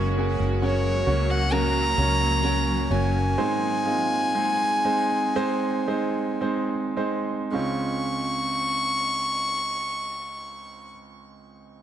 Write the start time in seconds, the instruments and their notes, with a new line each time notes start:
Already playing: fingered electric bass F#1, grand piano C#3 A#3 C#4 F#4 C#5, clean electric guitar F#3 C#4 F#4 A#4, ambient pad F#3 A#3 F#4
0.18 grand piano A#3 C#4 F#4 G#4, clean electric guitar C#4 F#4 A#4
0.40 fingered electric bass F#1
0.62 clean electric guitar F#3 C#4 F#4 A#4, grand piano A#3 C#4 F#4 C#5, violin C#5
1.06 fingered electric bass C#2, grand piano A#3 C#4 F#4 C#5, clean electric guitar C#4 F#4 A#4
1.31 violin F#5
1.52 clean electric guitar F#3 C#4 F#4 A#4, grand piano A#3 C#4 F#4 A#4, violin A#5
1.97 fingered electric bass C#2, grand piano A#3 C#4 F#4 C#5
2.43 clean electric guitar F#3 C#4 F#4 A#4, grand piano A#3 C#4 F#4 C#5
2.90 fingered electric bass F#1, grand piano A#3 C#4 F#4 C#5, violin G#5
3.38 grand piano G#2 D#3 G#3 C4 D#4 C5
3.85 grand piano G#3 C4 D#4 F4
4.35 grand piano G#3 C4 D#4 G#4
4.85 grand piano G#3 C4 D#4 C5
5.36 grand piano G#3 C4 D#4 C5
5.87 grand piano G#3 C4 D#4 C5
6.41 grand piano G#3 C4 D#4 C5
6.96 grand piano G#3 C4 D#4 C5
7.51 grand piano C#2 G#3 C4 C#4 F4, violin C#6